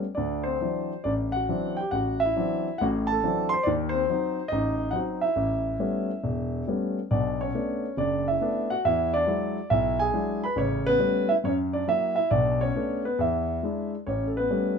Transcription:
0.15 0.55 D2 medium
0.15 0.44 D4 medium
0.15 0.46 D5 medium
0.43 0.60 C4 medium
0.43 1.00 C5 medium
0.61 0.92 E3 soft
0.61 0.92 F#3 soft
0.61 0.92 C4 soft
0.61 0.92 D4 soft
1.04 1.43 A1 medium
1.04 1.13 D4 medium
1.04 1.10 D5 medium
1.32 1.78 F#5 medium
1.36 1.76 F#4 medium
1.49 1.79 E3 soft
1.49 1.79 F#3 soft
1.49 1.79 C4 soft
1.49 1.79 D4 medium
1.77 1.93 G5 medium
1.81 1.93 G4 medium
1.91 2.30 A1 medium
1.91 2.21 F#5 medium
1.95 2.21 F#4 medium
2.20 2.81 E5 medium
2.25 2.78 E4 medium
2.36 2.66 E3 medium
2.36 2.67 F#3 soft
2.36 2.67 C4 soft
2.36 2.67 D4 medium
2.78 3.18 A1 medium
2.78 3.18 A2 medium
2.78 2.85 F#5 medium
2.83 2.89 F#4 medium
3.07 3.52 A5 medium
3.12 3.50 A4 medium
3.24 3.53 E3 medium
3.24 3.53 F#3 soft
3.24 3.53 C4 soft
3.24 3.53 D4 medium
3.49 3.66 C6 loud
3.54 3.66 C5 medium
3.63 4.03 D#2 medium
3.63 4.03 D#3 medium
3.63 3.70 D5 medium
3.68 3.74 D4 medium
3.89 4.51 C5 medium
3.94 4.08 C4 medium
4.10 4.38 F#3 medium
4.10 4.39 C4 soft
4.10 4.39 D#4 medium
4.48 4.89 A1 medium
4.48 4.94 D#5 medium
4.53 4.92 D#4 medium
4.91 5.23 F#3 soft
4.91 5.23 C4 soft
4.91 5.23 D#4 medium
4.91 4.97 F#5 medium
4.96 5.02 F#4 medium
5.21 6.65 E4 medium
5.21 6.63 E5 medium
5.36 5.74 A1 medium
5.79 6.10 G3 soft
5.79 6.10 A3 soft
5.79 6.10 B3 soft
5.79 6.10 C#4 medium
6.24 6.62 E1 medium
6.67 6.98 G3 soft
6.67 6.98 A3 soft
6.67 6.98 B3 soft
6.67 6.98 C#4 soft
7.11 7.49 B1 medium
7.11 7.49 B2 medium
7.11 7.39 D4 medium
7.11 7.38 D5 medium
7.41 7.96 C#4 medium
7.41 8.01 C#5 medium
7.54 7.85 A3 soft
7.54 7.85 B3 soft
7.54 7.85 D4 medium
7.97 8.36 F#1 medium
7.97 8.26 D4 medium
7.97 8.25 D5 medium
8.28 8.69 E4 medium
8.28 8.72 E5 medium
8.41 8.71 A3 soft
8.41 8.72 B3 soft
8.41 8.72 D4 medium
8.70 8.85 F#4 medium
8.70 8.86 F#5 medium
8.85 9.22 E2 medium
8.85 9.12 E4 medium
8.85 9.14 E5 medium
9.14 9.26 D4 medium
9.14 9.73 D5 medium
9.26 9.57 F#3 medium
9.26 9.57 G#3 soft
9.26 9.57 E4 medium
9.70 10.08 B1 medium
9.70 9.98 E4 medium
9.70 9.97 E5 medium
9.99 10.40 G#4 medium
9.99 10.43 G#5 medium
10.14 10.43 F#3 soft
10.14 10.43 G#3 soft
10.14 10.43 D4 soft
10.14 10.43 E4 medium
10.44 10.58 B4 medium
10.44 10.58 B5 medium
10.56 10.94 A1 medium
10.56 10.94 C#3 medium
10.56 10.86 C#5 medium
10.60 10.85 C#4 medium
10.86 10.98 B3 medium
10.86 11.30 B4 loud
10.99 11.29 G3 soft
10.99 11.30 A3 soft
10.99 11.30 B3 soft
10.99 11.30 C#4 medium
11.29 11.36 E4 medium
11.29 11.34 E5 medium
11.44 11.81 F#2 medium
11.44 11.53 C#4 medium
11.44 11.51 C#5 medium
11.73 11.88 D4 medium
11.73 11.87 D5 medium
11.88 12.17 F#3 medium
11.88 12.17 A#3 soft
11.88 12.16 E4 medium
11.88 12.14 E5 medium
12.16 12.30 E4 medium
12.16 12.29 E5 medium
12.31 12.68 B1 medium
12.31 12.68 B2 medium
12.31 12.58 D4 medium
12.31 12.60 D5 medium
12.61 13.02 C#4 medium
12.61 13.05 C#5 medium
12.76 13.05 A3 soft
12.76 13.04 B3 soft
12.76 13.05 D4 medium
13.05 13.18 B3 medium
13.05 13.18 B4 medium
13.19 13.57 E2 medium
13.19 13.63 E4 medium
13.19 13.89 E5 medium
13.63 13.94 G#3 soft
13.63 13.94 D4 soft
13.63 13.94 E4 medium
14.07 14.45 A1 medium
14.07 14.27 C#4 medium
14.07 14.27 C#5 medium
14.27 14.36 A4 medium
14.37 14.49 B3 medium
14.37 14.79 B4 medium
14.50 14.79 G3 medium
14.50 14.79 A3 soft
14.50 14.79 B3 soft
14.50 14.79 C#4 medium

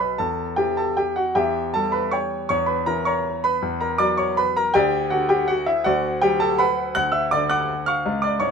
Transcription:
0.00 0.16 B1 soft
0.00 0.20 F#3 soft
0.00 0.18 B4 medium
0.00 0.19 B5 medium
0.18 1.32 E2 soft
0.18 0.55 A4 medium
0.18 0.57 A5 medium
0.56 1.81 E3 soft
0.56 0.76 G4 medium
0.56 0.77 G5 medium
0.77 0.96 A4 medium
0.77 0.97 A5 medium
0.97 1.16 G4 medium
0.97 1.16 G5 medium
1.16 1.34 F#4 medium
1.16 1.35 F#5 medium
1.35 2.46 E2 medium
1.35 1.71 G4 medium
1.35 1.72 E5 medium
1.35 1.73 G5 medium
1.74 2.50 G3 soft
1.74 1.93 A4 medium
1.74 1.93 A5 medium
1.92 2.11 B4 medium
1.92 2.12 B5 medium
2.11 2.47 C#5 medium
2.11 2.47 G5 medium
2.11 2.48 C#6 medium
2.49 3.59 E2 medium
2.49 2.67 C#5 medium
2.49 2.68 C#6 medium
2.66 2.86 B4 medium
2.66 2.86 B5 medium
2.86 4.07 E3 soft
2.86 3.05 A#4 medium
2.86 3.05 A#5 medium
3.05 3.42 C#5 medium
3.05 3.42 A#5 medium
3.05 3.44 C#6 medium
3.44 3.79 B4 medium
3.44 3.81 B5 medium
3.62 4.71 E2 medium
3.81 3.99 A#4 medium
3.81 3.99 A#5 medium
3.98 4.74 F#3 soft
3.98 4.17 D5 medium
3.98 4.18 D6 medium
4.17 4.36 C#5 medium
4.17 4.37 C#6 medium
4.37 4.56 B4 medium
4.37 4.56 B5 medium
4.57 4.74 A#4 medium
4.57 4.75 A#5 medium
4.74 5.83 D2 medium
4.74 5.09 G4 medium
4.74 5.09 D5 medium
4.74 5.11 G5 loud
5.10 6.30 D3 soft
5.10 5.29 F#4 medium
5.10 5.30 F#5 medium
5.29 5.48 G4 medium
5.29 5.49 G5 medium
5.48 5.67 F#4 medium
5.48 5.67 F#5 medium
5.66 5.85 E4 medium
5.66 5.86 E5 medium
5.84 6.92 D2 medium
5.84 6.20 F#4 medium
5.84 6.20 D5 medium
5.84 6.22 F#5 medium
6.21 6.96 F#3 soft
6.21 6.40 G4 medium
6.21 6.41 G5 medium
6.40 6.59 A4 medium
6.40 6.59 A5 medium
6.58 6.93 B4 medium
6.58 6.93 F#5 medium
6.58 6.95 B5 medium
6.95 8.02 D2 medium
6.95 7.13 F#5 medium
6.95 7.13 F#6 loud
7.12 7.30 E5 medium
7.12 7.31 E6 medium
7.31 8.05 D3 soft
7.31 7.49 D5 medium
7.31 7.49 D6 loud
7.50 7.85 F#5 medium
7.50 7.85 D6 medium
7.50 7.87 F#6 medium
7.86 8.20 F5 medium
7.86 8.20 C#6 medium
7.86 8.22 F6 medium
8.06 8.51 C#2 medium
8.22 8.40 D5 medium
8.22 8.40 D6 medium
8.40 8.51 G#2 soft
8.40 8.51 C#5 medium
8.40 8.51 C#6 medium

